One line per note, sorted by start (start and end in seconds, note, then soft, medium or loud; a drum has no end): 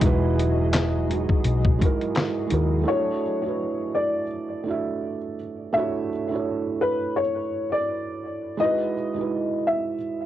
0.00 1.25 E1 loud
0.00 2.83 F#3 medium
0.00 1.07 G#3 loud
0.00 1.09 D#4 loud
0.00 0.03 E4 medium
0.00 0.71 E4 loud
0.00 0.05 F#4 medium
0.00 2.83 F#4 medium
0.00 1.14 G#4 medium
0.00 2.83 G#4 medium
0.00 0.06 B4 medium
0.00 2.83 D#5 medium
0.00 kick loud
0.00 closed hi-hat medium
0.05 0.72 F#4 medium
0.05 0.73 B4 loud
0.39 closed hi-hat medium
0.73 snare loud
0.73 clap medium
0.73 closed hi-hat loud
1.07 1.55 G#3 medium
1.07 1.56 D#4 medium
1.07 1.57 E4 medium
1.07 closed hi-hat medium
1.13 1.58 F#4 medium
1.13 1.59 G#4 medium
1.29 kick medium
1.44 1.76 B1 medium
1.44 closed hi-hat medium
1.65 kick loud
1.79 2.26 G#3 medium
1.79 2.27 D#4 medium
1.79 2.28 E4 medium
1.79 kick medium
1.79 closed hi-hat medium
1.83 2.29 F#4 medium
1.83 2.30 A#4 medium
2.01 closed hi-hat soft
2.15 snare loud
2.15 clap medium
2.15 closed hi-hat medium
2.47 2.74 G#3 medium
2.47 2.75 D#4 medium
2.47 2.75 E4 medium
2.47 closed hi-hat medium
2.52 2.83 D#2 medium
2.52 2.76 F#4 medium
2.52 2.77 A#4 medium
2.84 3.20 A3 medium
2.84 3.21 D4 medium
2.84 3.21 E4 medium
2.88 3.22 F#4 medium
2.88 3.91 C#5 medium
2.88 3.23 C#5 medium
3.42 4.21 A3 medium
3.42 4.22 D4 medium
3.42 4.23 E4 medium
3.46 4.24 F#4 medium
3.46 4.25 B4 medium
3.95 5.18 D5 medium
4.64 5.34 A3 medium
4.64 5.35 D4 medium
4.64 5.35 E4 medium
4.68 5.36 F#4 medium
4.68 5.37 E5 medium
5.72 6.07 A3 medium
5.72 6.08 D4 medium
5.72 6.09 E4 medium
5.72 6.76 E5 medium
5.77 6.10 F#4 medium
5.77 6.10 C#5 medium
6.29 7.18 A3 medium
6.29 7.19 D4 medium
6.29 7.20 E4 medium
6.33 7.21 F#4 medium
6.33 7.22 C#5 medium
6.81 7.13 B4 medium
7.16 7.68 C#5 medium
7.72 8.55 D5 medium
8.57 8.92 G#3 medium
8.57 8.93 D#4 medium
8.57 8.94 E4 medium
8.57 9.62 D#5 medium
8.62 8.95 F#4 medium
8.62 8.96 B4 loud
9.14 9.93 G#3 medium
9.14 9.94 D#4 medium
9.14 9.95 E4 medium
9.19 9.96 F#4 medium
9.19 9.97 B4 medium
9.67 10.26 E5 medium